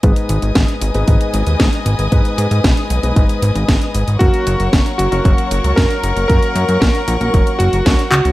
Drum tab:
HH |xxxxxxxxxxxxxxxx|xxxxxxxxxxxxxxxx|xxxxxxxxxxxxxxxx|xxxxxxxxxxxxxxxx|
CP |----------------|----------------|----------------|--------------x-|
SD |----o-------o---|----o-------o---|----o-------o---|----o-------o---|
BD |o---o---o---o---|o---o---o---o---|o---o---o---o---|o---o---o---o---|